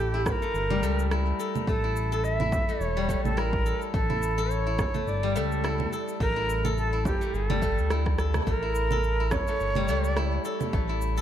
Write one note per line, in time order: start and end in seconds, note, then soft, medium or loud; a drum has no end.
0.00 0.34 A1 loud
0.00 0.42 A3 medium
0.00 0.13 E4 medium
0.00 0.28 G4 medium
0.00 1.39 A4 medium
0.14 1.11 E4 medium
0.26 0.32 C#5 loud
0.26 kick loud
0.26 cross-stick medium
0.26 frame drum medium
0.26 shaker medium
0.31 1.39 A#4 loud
0.42 0.82 A3 medium
0.42 shaker soft
0.54 0.84 G1 medium
0.54 shaker soft
0.70 2.96 G3 medium
0.70 low conga medium
0.82 1.33 C#2 medium
0.82 1.68 A3 loud
0.82 shaker medium
0.99 shaker soft
1.11 1.83 E4 medium
1.11 cross-stick medium
1.11 shaker soft
1.39 2.12 A4 medium
1.39 shaker medium
1.55 low conga medium
1.55 shaker soft
1.67 2.60 A1 loud
1.67 2.68 A3 medium
1.67 2.26 A4 loud
1.67 kick loud
1.67 shaker soft
1.84 2.40 E4 medium
1.96 shaker medium
2.12 3.65 A4 medium
2.12 shaker soft
2.24 2.82 E5 loud
2.24 shaker soft
2.40 3.36 E4 medium
2.40 low conga medium
2.52 kick loud
2.52 frame drum medium
2.52 shaker medium
2.69 3.08 A3 medium
2.69 shaker soft
2.80 3.16 E1 medium
2.80 3.24 C#5 loud
2.80 shaker soft
2.97 3.99 G3 medium
3.09 3.94 A3 medium
3.09 kick medium
3.09 shaker medium
3.24 3.73 A1 medium
3.24 3.39 A4 medium
3.24 low conga medium
3.24 shaker soft
3.37 4.09 E4 medium
3.37 3.81 A#4 medium
3.37 cross-stick medium
3.37 shaker soft
3.53 kick loud
3.66 4.37 A4 medium
3.66 shaker medium
3.82 shaker soft
3.94 4.86 A1 loud
3.94 4.94 A3 medium
3.94 4.53 A4 loud
3.94 kick loud
3.94 shaker soft
4.10 4.66 E4 medium
4.10 low conga medium
4.23 shaker medium
4.38 5.92 A4 loud
4.38 shaker soft
4.51 5.10 C#5 loud
4.51 shaker soft
4.67 5.63 E4 medium
4.79 kick loud
4.79 cross-stick medium
4.79 frame drum medium
4.79 shaker medium
4.94 5.35 A3 medium
4.94 low conga medium
4.94 shaker soft
5.07 5.38 G1 medium
5.07 5.38 D5 medium
5.07 shaker soft
5.23 7.49 G3 loud
5.36 5.86 C#2 medium
5.36 6.20 A3 loud
5.36 5.93 A4 medium
5.36 shaker medium
5.52 shaker soft
5.64 6.36 E4 medium
5.64 cross-stick medium
5.64 shaker soft
5.80 low conga medium
5.92 6.64 A4 medium
5.92 shaker medium
6.08 shaker soft
6.20 7.13 A1 loud
6.20 7.21 A3 medium
6.20 6.74 A#4 loud
6.20 kick loud
6.20 shaker soft
6.36 6.92 E4 medium
6.50 shaker medium
6.65 8.19 A4 loud
6.65 low conga medium
6.65 shaker soft
6.78 7.04 A4 loud
6.78 shaker soft
6.93 7.90 E4 medium
7.05 7.36 G4 medium
7.05 kick loud
7.05 frame drum medium
7.05 shaker medium
7.21 7.62 A3 medium
7.21 shaker soft
7.34 7.80 G1 medium
7.34 7.47 G#4 medium
7.34 shaker soft
7.47 8.52 G3 loud
7.47 8.19 A4 medium
7.47 low conga medium
7.62 8.47 A3 loud
7.62 kick medium
7.62 shaker medium
7.78 8.41 D2 medium
7.78 shaker soft
7.90 8.62 E4 medium
7.90 cross-stick medium
7.90 shaker soft
8.06 kick loud
8.06 cross-stick medium
8.19 8.91 A4 medium
8.19 cross-stick medium
8.19 shaker medium
8.34 cross-stick medium
8.34 low conga medium
8.34 shaker soft
8.47 9.39 A1 loud
8.47 9.48 A3 medium
8.47 9.33 A#4 loud
8.47 kick loud
8.47 shaker soft
8.62 9.20 E4 medium
8.75 shaker medium
8.91 10.44 A4 medium
8.91 low conga medium
8.91 shaker soft
9.04 shaker soft
9.20 10.16 E4 medium
9.31 10.45 C#5 loud
9.31 kick loud
9.31 cross-stick medium
9.31 frame drum medium
9.31 shaker medium
9.47 9.88 A3 medium
9.47 shaker soft
9.60 9.90 G1 medium
9.60 shaker soft
9.75 11.21 G3 loud
9.75 low conga medium
9.88 10.39 C#2 medium
9.88 10.73 A3 loud
9.88 shaker medium
10.04 shaker soft
10.17 10.89 E4 medium
10.17 cross-stick medium
10.17 shaker soft
10.45 11.17 A4 medium
10.45 shaker medium
10.61 low conga medium
10.61 shaker soft
10.73 11.21 A1 loud
10.73 11.21 A3 medium
10.73 kick loud
10.73 shaker soft
10.89 11.21 E4 medium
11.02 shaker medium
11.17 11.21 A4 medium
11.17 shaker soft